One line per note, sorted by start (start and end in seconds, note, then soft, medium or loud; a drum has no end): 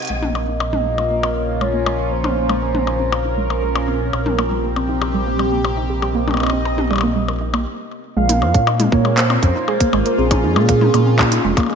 0.00 0.78 G4 medium
0.00 1.00 D#5 medium
0.00 closed hi-hat soft
0.05 closed hi-hat soft
0.07 4.11 A#1 medium
0.07 0.15 G#3 medium
0.07 4.82 A#3 medium
0.07 1.63 D#5 loud
0.07 closed hi-hat soft
0.23 0.31 A#3 medium
0.23 high tom medium
0.33 0.44 C4 medium
0.33 5.40 F4 medium
0.33 7.66 A#4 medium
0.33 percussion blips medium
0.48 0.57 C#4 medium
0.60 0.72 D#4 medium
0.60 percussion blips medium
0.64 4.13 C#4 medium
0.73 0.82 G#3 loud
0.73 high tom medium
0.86 0.94 A#3 loud
0.98 1.03 G#3 medium
0.98 percussion blips soft
1.11 1.20 A#3 medium
1.23 1.32 C4 medium
1.23 percussion blips medium
1.36 1.45 C#4 medium
1.49 1.61 D#4 medium
1.61 1.70 G#3 medium
1.61 2.13 C#5 loud
1.61 percussion blips soft
1.74 1.83 A#3 loud
1.86 1.92 G#3 medium
1.86 percussion blips medium
1.99 2.08 A#3 medium
2.12 2.20 C4 medium
2.12 3.88 C5 loud
2.24 2.33 C#4 medium
2.24 high tom medium
2.24 percussion blips soft
2.37 2.49 D#4 medium
2.49 2.58 G#3 loud
2.49 percussion blips medium
2.62 2.71 A#3 loud
2.75 2.80 G#3 medium
2.75 high tom medium
2.87 2.96 A#3 medium
2.87 percussion blips soft
3.00 3.09 C4 medium
3.12 3.21 C#4 medium
3.12 percussion blips medium
3.25 3.37 D#4 medium
3.38 3.46 G#3 loud
3.50 3.59 A#3 medium
3.50 percussion blips soft
3.63 3.68 G#3 medium
3.76 3.84 A#3 medium
3.76 percussion blips medium
3.88 3.97 C4 medium
4.01 4.10 C#4 medium
4.13 7.66 A#1 medium
4.13 7.66 C4 medium
4.13 4.25 G4 medium
4.13 percussion blips medium
4.26 4.35 G3 loud
4.26 high tom medium
4.37 4.47 A#3 loud
4.37 7.66 G4 medium
4.37 percussion blips medium
4.51 4.56 G3 medium
4.64 4.73 A#3 medium
4.76 4.85 C4 medium
4.76 percussion blips soft
4.89 4.98 D#4 medium
5.02 5.14 G4 medium
5.02 percussion blips medium
5.14 5.23 G3 loud
5.27 5.36 A#3 loud
5.39 5.45 G3 medium
5.39 percussion blips soft
5.52 5.61 A#3 medium
5.65 5.73 C4 medium
5.65 percussion blips medium
5.77 5.86 D#4 medium
5.90 6.02 G4 medium
5.90 7.66 D#5 medium
6.02 6.11 G3 loud
6.02 percussion blips soft
6.15 6.24 A#3 loud
6.28 6.33 G3 medium
6.28 high tom medium
6.28 percussion blips soft
6.31 percussion blips soft
6.34 percussion blips soft
6.37 6.49 A#3 medium
6.37 percussion blips soft
6.40 percussion blips soft
6.43 percussion blips medium
6.47 percussion blips medium
6.50 6.62 C4 medium
6.50 percussion blips medium
6.65 6.74 D#4 medium
6.65 percussion blips soft
6.78 6.90 G4 medium
6.78 high tom medium
6.91 6.99 G3 loud
6.91 percussion blips soft
6.93 percussion blips soft
6.96 percussion blips soft
6.98 percussion blips medium
7.01 7.12 A#3 loud
7.01 percussion blips medium
7.16 7.21 G3 medium
7.28 7.37 A#3 medium
7.28 percussion blips soft
7.41 7.53 D#4 medium
7.54 7.62 A#3 medium
7.54 percussion blips medium
8.17 8.43 A#1 loud
8.17 8.22 G#3 medium
8.17 11.75 A#3 medium
8.17 8.94 F5 loud
8.29 8.38 A#3 medium
8.29 closed hi-hat loud
8.29 high tom medium
8.42 8.56 F2 loud
8.42 8.51 C4 medium
8.42 percussion blips medium
8.47 11.75 F4 medium
8.54 8.87 A#2 loud
8.54 8.63 C#4 medium
8.54 kick loud
8.54 closed hi-hat medium
8.67 8.79 D#4 medium
8.67 percussion blips medium
8.80 8.88 G#3 loud
8.80 closed hi-hat medium
8.80 high tom medium
8.92 9.38 A#2 medium
8.92 9.01 A#3 loud
8.92 9.19 C#5 loud
8.92 kick loud
9.05 9.10 G#3 medium
9.05 percussion blips medium
9.18 9.26 A#3 medium
9.18 10.20 C5 loud
9.18 clap loud
9.18 closed hi-hat medium
9.30 9.39 C4 medium
9.30 percussion blips medium
9.43 9.52 F2 loud
9.43 9.52 C#4 medium
9.43 kick loud
9.43 closed hi-hat medium
9.55 9.67 D#4 medium
9.68 9.77 G#3 loud
9.68 percussion blips medium
9.74 11.75 C#4 medium
9.80 9.89 A#3 loud
9.80 kick loud
9.80 closed hi-hat loud
9.93 10.03 G#1 medium
9.93 9.98 G#3 medium
9.93 percussion blips medium
10.06 10.15 A#3 medium
10.06 closed hi-hat medium
10.18 10.45 A#1 loud
10.18 10.27 C4 medium
10.18 11.70 G#4 loud
10.31 10.40 C#4 medium
10.31 kick loud
10.31 closed hi-hat medium
10.31 high tom medium
10.31 percussion blips medium
10.44 10.58 F2 medium
10.44 10.56 D#4 medium
10.56 10.89 A#2 loud
10.56 10.65 G#3 loud
10.56 percussion blips medium
10.69 10.78 A#3 loud
10.69 kick loud
10.69 closed hi-hat medium
10.81 10.87 G#3 medium
10.81 high tom medium
10.94 11.39 A#2 medium
10.94 11.03 A#3 medium
10.94 closed hi-hat medium
10.94 percussion blips medium
11.07 11.15 C4 medium
11.19 11.28 C#4 medium
11.19 kick loud
11.19 clap loud
11.19 percussion blips medium
11.32 11.44 D#4 medium
11.32 closed hi-hat loud
11.44 11.54 F1 medium
11.44 11.53 G#3 loud
11.57 11.66 A#3 loud
11.57 kick loud
11.57 closed hi-hat medium
11.57 percussion blips soft
11.60 percussion blips soft
11.66 percussion blips soft
11.70 11.75 G#3 medium
11.70 percussion blips soft